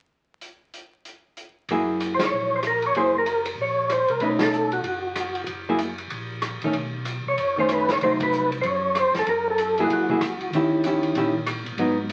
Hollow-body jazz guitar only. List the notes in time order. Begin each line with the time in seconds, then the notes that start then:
1.71 F#3 A#3 E4 G#4
2.96 F#3 A#3 E4 G#4
4.22 A3 C#4 D#4
5.69 F#3 A#3 E4 G#4
6.64 D#3 A3 C#4
7.57 D#3 A3 C#4
8.03 F#3 A3 D#4
9.79 F#3 A#3 E4 G#4
10.10 F#3 A#3 E4 G#4
10.54 D#3 C#4 E4 G4
10.86 D#3 C#4 E4 G4
11.17 D#3 C#4 E4 G4
11.79 F#3 B3 D#4